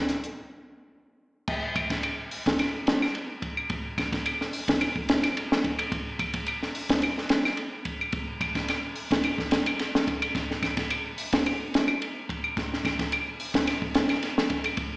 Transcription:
0.09 snare soft
0.09 closed hi-hat soft
0.24 closed hi-hat medium
1.48 kick medium
1.48 crash medium
1.76 kick medium
1.76 ride bell medium
1.76 claves medium
1.90 kick medium
1.90 snare soft
1.90 ride bell medium
2.03 ride bell medium
2.03 claves medium
2.31 open hi-hat medium
2.46 kick medium
2.46 snare medium
2.46 ride bell soft
2.59 snare soft
2.59 ride bell medium
2.59 claves medium
2.87 snare medium
2.87 ride bell medium
3.02 snare soft
3.02 claves medium
3.15 ride bell soft
3.42 kick medium
3.42 ride bell soft
3.57 claves medium
3.70 kick loud
3.70 ride bell medium
3.98 kick medium
3.98 snare soft
3.98 ride bell medium
3.98 claves medium
4.12 kick medium
4.12 snare soft
4.12 ride bell medium
4.26 ride bell medium
4.26 claves medium
4.41 snare soft
4.53 open hi-hat medium
4.68 kick medium
4.68 snare medium
4.68 ride bell medium
4.81 ride bell medium
4.81 claves medium
4.96 kick medium
5.09 snare medium
5.09 ride bell medium
5.23 snare soft
5.23 ride bell medium
5.23 claves medium
5.37 ride bell medium
5.52 snare medium
5.64 kick medium
5.64 ride bell medium
5.79 ride bell medium
5.79 claves medium
5.92 kick loud
5.92 ride bell medium
6.19 kick medium
6.19 ride bell medium
6.19 claves medium
6.34 kick medium
6.34 ride bell medium
6.46 ride bell medium
6.46 claves medium
6.63 snare soft
6.75 open hi-hat medium
6.89 kick medium
6.89 snare medium
6.89 ride bell medium
7.02 ride bell medium
7.02 claves medium
7.18 snare soft
7.29 snare medium
7.29 ride bell medium
7.45 snare soft
7.45 claves medium
7.57 ride bell soft
7.85 kick medium
7.85 ride bell medium
8.01 claves medium
8.12 kick loud
8.12 ride bell medium
8.41 kick medium
8.41 ride bell medium
8.41 claves medium
8.55 kick medium
8.55 snare soft
8.55 ride bell medium
8.68 snare soft
8.68 ride bell medium
8.68 claves medium
8.96 open hi-hat medium
9.11 kick medium
9.11 snare medium
9.11 ride bell medium
9.24 ride bell medium
9.24 claves medium
9.38 kick medium
9.38 snare soft
9.51 snare medium
9.51 ride bell medium
9.66 ride bell medium
9.66 claves medium
9.79 snare soft
9.79 ride bell medium
9.95 snare medium
10.07 kick medium
10.07 ride bell medium
10.22 ride bell medium
10.22 claves medium
10.35 kick medium
10.35 snare soft
10.35 ride bell medium
10.51 snare soft
10.63 kick medium
10.63 snare soft
10.63 ride bell medium
10.63 claves medium
10.77 kick medium
10.77 snare soft
10.77 ride bell medium
10.90 ride bell medium
10.90 claves medium
11.18 open hi-hat medium
11.33 kick medium
11.33 snare medium
11.33 ride bell medium
11.46 ride bell medium
11.46 claves medium
11.74 snare medium
11.74 ride bell medium
11.88 claves medium
12.02 ride bell medium
12.29 kick medium
12.29 ride bell soft
12.44 claves medium
12.57 kick loud
12.57 snare soft
12.57 ride bell soft
12.73 snare soft
12.85 kick medium
12.85 snare soft
12.85 ride bell soft
12.85 claves medium
12.99 kick medium
12.99 snare soft
12.99 ride bell medium
13.12 ride bell medium
13.12 claves medium
13.40 open hi-hat medium
13.54 kick medium
13.54 snare medium
13.54 ride bell medium
13.67 snare soft
13.67 ride bell medium
13.67 claves medium
13.82 kick medium
13.94 snare medium
13.94 ride bell medium
14.09 snare soft
14.09 ride bell medium
14.09 claves medium
14.23 snare soft
14.23 ride bell medium
14.38 snare medium
14.50 kick medium
14.50 ride bell medium
14.64 ride bell medium
14.64 claves medium
14.77 kick medium
14.77 ride bell medium

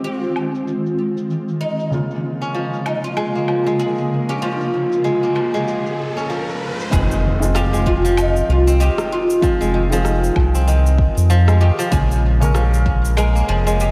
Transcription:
0.00 1.88 D#3 medium
0.00 1.92 D#3 medium
0.00 1.89 G#3 medium
0.00 6.92 G#3 medium
0.00 1.89 C4 medium
0.00 3.94 C4 medium
0.00 1.90 F4 medium
0.00 6.92 F4 medium
0.00 2.88 C5 medium
0.04 1.57 F4 medium
0.04 cabasa soft
0.24 cabasa soft
0.36 low woodblock soft
0.55 cabasa medium
0.68 cabasa medium
0.86 cabasa soft
1.17 cabasa medium
1.30 cabasa soft
1.49 cabasa soft
1.61 2.82 D#4 medium
1.80 cabasa medium
1.90 6.88 C#3 medium
1.90 6.92 C#3 medium
1.90 6.89 G#3 medium
1.90 6.89 A#3 medium
1.90 6.90 F4 medium
1.90 riser medium
1.90 cabasa medium
2.11 cabasa soft
2.28 6.92 A#3 medium
2.33 6.92 A#4 medium
2.42 4.15 C#4 medium
2.42 cabasa medium
2.55 3.47 F3 medium
2.55 cabasa soft
2.74 cabasa soft
2.86 3.04 D#4 medium
2.86 low woodblock medium
3.04 3.76 F4 medium
3.04 cabasa medium
3.17 3.65 G#3 medium
3.17 cabasa medium
3.17 low woodblock medium
3.35 5.23 A#3 medium
3.35 cabasa soft
3.48 4.41 F3 medium
3.48 low woodblock medium
3.66 5.03 G#3 medium
3.66 cabasa medium
3.80 4.29 G#4 medium
3.80 cabasa soft
3.98 cabasa soft
4.29 6.03 C#4 medium
4.29 4.42 G4 medium
4.29 cabasa medium
4.42 5.34 F3 medium
4.42 6.26 F4 medium
4.42 cabasa medium
4.61 cabasa soft
4.92 cabasa medium
5.04 5.53 G#3 medium
5.04 cabasa soft
5.23 7.16 A#3 medium
5.23 cabasa soft
5.35 6.28 F3 medium
5.35 low woodblock soft
5.54 6.97 G#3 medium
5.54 cabasa medium
5.68 cabasa medium
5.86 cabasa soft
6.17 7.91 C#4 medium
6.17 cabasa medium
6.30 6.97 F3 medium
6.30 cabasa soft
6.49 cabasa soft
6.80 cabasa medium
6.91 8.42 F1 loud
6.91 7.37 D#3 medium
6.91 7.85 D#3 medium
6.91 7.37 G#3 medium
6.91 7.38 C4 medium
6.91 7.38 F4 medium
6.91 7.55 G#4 loud
6.91 kick loud
6.91 impact medium
6.91 cabasa medium
7.11 cabasa soft
7.40 9.38 D#3 medium
7.40 9.39 G#3 medium
7.40 9.39 C4 medium
7.40 9.40 F4 medium
7.40 cabasa medium
7.55 7.91 F3 loud
7.55 7.86 G4 loud
7.55 cross-stick medium
7.55 cabasa medium
7.73 7.91 G#3 medium
7.73 cabasa soft
7.86 8.79 D#3 medium
7.86 8.18 F4 medium
7.86 kick loud
8.05 8.85 F3 medium
8.05 cabasa medium
8.17 8.47 D#4 medium
8.17 cabasa medium
8.17 low woodblock medium
8.37 cabasa soft
8.48 8.89 C2 loud
8.48 8.78 F4 loud
8.67 10.47 C4 medium
8.67 cabasa medium
8.80 9.73 D#3 medium
8.80 9.12 G4 medium
8.80 cabasa medium
8.98 cross-stick medium
8.98 cabasa soft
9.12 10.33 F4 medium
9.30 cabasa medium
9.41 9.87 D#3 medium
9.41 9.78 F3 loud
9.41 9.87 G#3 medium
9.41 9.88 C4 medium
9.41 9.88 F4 medium
9.41 kick loud
9.41 cabasa medium
9.61 10.30 F1 medium
9.61 9.78 G#3 medium
9.61 cabasa soft
9.74 10.66 D#3 medium
9.90 11.88 D#3 medium
9.90 10.72 F3 loud
9.90 11.89 G#3 medium
9.90 11.89 C4 medium
9.90 cabasa medium
9.94 11.90 G#4 medium
10.05 cross-stick medium
10.05 cabasa medium
10.24 cabasa soft
10.36 11.08 C2 loud
10.36 kick loud
10.36 low woodblock medium
10.55 12.35 C4 medium
10.55 cabasa medium
10.68 11.59 D#3 medium
10.68 cabasa medium
10.86 cabasa soft
10.98 kick loud
11.17 11.71 F2 loud
11.17 cabasa medium
11.30 11.66 F3 loud
11.30 cabasa medium
11.48 11.66 G#3 medium
11.48 cross-stick medium
11.48 cabasa soft
11.60 11.97 D#3 medium
11.60 11.90 G4 loud
11.79 11.97 F3 loud
11.79 cabasa medium
11.91 13.42 A#1 loud
11.91 12.37 C#3 medium
11.91 12.37 G#3 medium
11.91 12.37 A#3 medium
11.91 12.38 F4 medium
11.91 12.82 G#4 loud
11.91 kick loud
11.91 cabasa medium
12.11 cabasa soft
12.40 13.91 C#3 medium
12.40 13.91 G#3 medium
12.40 13.91 A#3 medium
12.40 13.91 C#4 medium
12.40 13.91 A#4 medium
12.40 cabasa medium
12.54 13.47 F3 medium
12.54 cross-stick medium
12.54 cabasa medium
12.74 cabasa soft
12.86 kick loud
13.05 cabasa medium
13.17 13.65 G#3 loud
13.17 13.48 A#4 loud
13.17 cabasa medium
13.17 low woodblock medium
13.35 13.91 A#3 medium
13.35 cabasa soft
13.48 13.89 F1 loud
13.48 13.91 F3 medium
13.48 13.78 G#4 loud
13.67 13.91 G#3 loud
13.67 cabasa medium
13.80 13.91 G4 medium
13.80 cabasa medium

